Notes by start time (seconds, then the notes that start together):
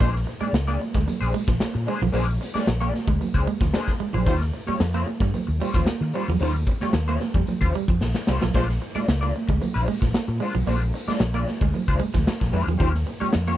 0.00 A#1 G#3 A#3 D4 G#4 C5, kick, closed hi-hat
0.15 muted clean electric guitar stroke, snare
0.28 muted clean electric guitar stroke, closed hi-hat
0.40 G#3 A#3 D4 G#4 D5, muted fingered electric bass stroke, high conga
0.53 C#2, snare, closed hi-hat, muted conga
0.67 A#3 D4 G#4 D5
0.80 muted clean electric guitar stroke, closed hi-hat, high conga
0.94 D2 G#3, muted clean electric guitar stroke, kick, snare
1.07 muted clean electric guitar stroke, closed hi-hat, muted conga, high conga, low conga
1.21 A#1 A#3 D4 G#4 C5
1.33 G#3, muted clean electric guitar stroke, closed hi-hat, muted conga, high conga
1.48 A#1 F3, muted clean electric guitar stroke, kick, snare
1.60 muted clean electric guitar stroke, snare, closed hi-hat, muted conga, high conga
1.74 A#2, muted clean electric guitar stroke
1.86 G#3 A#3 D4 G#4 C5, open hi-hat, muted conga
2.01 B1 F3, muted clean electric guitar stroke, low conga
2.12 A#1 A#3 D4 G#4 C5, closed hi-hat
2.27 muted clean electric guitar stroke
2.40 muted clean electric guitar stroke, closed hi-hat, muted conga
2.54 G#3 A#3 D4 G#4 D5, muted fingered electric bass stroke, snare, high conga
2.67 A#1, muted clean electric guitar stroke, snare, closed hi-hat, muted conga
2.81 A#3 D4 G#4 D5
2.93 muted clean electric guitar stroke, snare, closed hi-hat, muted conga, high conga
3.07 D2 G#3, muted clean electric guitar stroke, kick
3.20 muted clean electric guitar stroke, closed hi-hat, muted conga, high conga, low conga
3.34 C#2 A#3 D4 G#4 C5, kick
3.46 G#3, muted clean electric guitar stroke, closed hi-hat, muted conga, high conga
3.61 D2 F3, muted clean electric guitar stroke, kick, snare
3.73 A#3 D4 G#4 C5, muted clean electric guitar stroke, snare, closed hi-hat, high conga
3.88 kick
4.00 G#3, muted fingered electric bass stroke, muted clean electric guitar stroke, open hi-hat
4.13 A#1 F3 A#3 D4 G#4 C5, low conga
4.26 D#2 D#3 G3 C#4 F4 C5, kick, closed hi-hat
4.41 muted clean electric guitar stroke, snare
4.53 muted clean electric guitar stroke, closed hi-hat, muted conga
4.67 G3 C#4 F4 C#5, muted fingered electric bass stroke, high conga
4.79 F2, muted clean electric guitar stroke, snare, closed hi-hat, muted conga
4.94 G3 A#3 C#4 F4 C#5
5.06 muted clean electric guitar stroke, closed hi-hat, muted conga, high conga
5.20 G2 G3, muted clean electric guitar stroke, kick, snare
5.34 muted clean electric guitar stroke, muted fingered electric bass stroke, closed hi-hat, muted conga, high conga, low conga
5.47 D#2, muted clean electric guitar stroke
5.60 G3 C#4 F4 C5, closed hi-hat, high conga
5.74 D#2 F3 G3 C#4 F4 C5, kick, snare
5.86 muted clean electric guitar stroke, snare, closed hi-hat, muted conga, high conga
6.01 D#3, muted clean electric guitar stroke
6.13 G3 C#4 F4 C5, open hi-hat, muted conga
6.28 E2 F3, muted clean electric guitar stroke, low conga
6.39 D#2 D#3 G3 C#4 F4 C5, closed hi-hat
6.54 muted clean electric guitar stroke
6.66 muted clean electric guitar stroke, kick, closed hi-hat, muted conga
6.81 G3 C#4 F4 C#5, muted fingered electric bass stroke, snare, high conga
6.93 D#2, muted clean electric guitar stroke, snare, closed hi-hat
7.08 G3 A#3 C#4 F4 C#5
7.20 muted clean electric guitar stroke, snare, closed hi-hat, muted conga, high conga
7.34 F2 G3, muted clean electric guitar stroke, kick
7.47 muted clean electric guitar stroke, muted fingered electric bass stroke, closed hi-hat, high conga, low conga
7.61 D#2 G3 C#4 F4 C5, kick
7.74 G3, muted clean electric guitar stroke, closed hi-hat, muted conga
7.88 F2 F3, muted clean electric guitar stroke, kick
8.01 A#1, muted clean electric guitar stroke, snare, high conga
8.14 muted clean electric guitar stroke, snare
8.27 C2 G3 C#4 F4 C5, snare, muted conga
8.41 B1 F3, muted clean electric guitar stroke, snare, low conga
8.54 A#1 G#3 A#3 D4 F4 C5, kick, crash
8.68 muted clean electric guitar stroke, snare
8.80 muted clean electric guitar stroke, closed hi-hat
8.95 G#3 D4 F4 D5, muted fingered electric bass stroke, high conga
9.07 C#2, muted clean electric guitar stroke, snare, closed hi-hat
9.21 G#3 A#3 D4 F4 D5
9.33 muted clean electric guitar stroke, closed hi-hat, high conga
9.48 D2 G#3, muted clean electric guitar stroke, kick
9.61 muted clean electric guitar stroke, closed hi-hat, muted conga, high conga, low conga
9.74 A#1 G#3 D4 F4 C5
9.87 G#3, muted clean electric guitar stroke, closed hi-hat, high conga
10.01 A#1 F3, muted clean electric guitar stroke, kick, snare
10.14 muted clean electric guitar stroke, snare, closed hi-hat, high conga
10.28 A#2, muted clean electric guitar stroke
10.40 G#3 D4 F4 C5, open hi-hat
10.53 B1 F3, muted clean electric guitar stroke, low conga
10.66 A#1 G#3 A#3 D4 F4 C5, closed hi-hat, muted conga
10.82 muted clean electric guitar stroke
10.94 muted clean electric guitar stroke, closed hi-hat, muted conga
11.07 G#3 D4 F4 D5, muted fingered electric bass stroke, snare, high conga
11.20 A#1, muted clean electric guitar stroke, snare, closed hi-hat
11.34 G#3 A#3 D4 F4 D5
11.47 muted clean electric guitar stroke, snare, closed hi-hat, muted conga, high conga
11.61 D2 G#3, muted clean electric guitar stroke, kick
11.73 muted fingered electric bass stroke, muted clean electric guitar stroke, closed hi-hat, muted conga, high conga, low conga
11.88 C#2 G#3 D4 F4 C5, kick
12.00 G#3, muted clean electric guitar stroke, closed hi-hat, muted conga, high conga
12.14 D2 F3, muted clean electric guitar stroke, kick, snare
12.24 muted clean electric guitar stroke, snare, closed hi-hat, high conga
12.40 A#1, muted clean electric guitar stroke, kick
12.52 F2 G#3 D4 F4 C5, open hi-hat
12.66 E2 F3, muted clean electric guitar stroke, low conga
12.78 D#2 D#3 G3 C#4 F4 G4 C5, kick, closed hi-hat
12.92 muted clean electric guitar stroke, snare
13.06 muted clean electric guitar stroke, closed hi-hat, muted conga
13.20 G3 C#4 F4 G4 C#5, muted fingered electric bass stroke, high conga
13.33 F2, muted clean electric guitar stroke, snare, closed hi-hat, muted conga
13.47 A#3 C#4 F4 G4 C#5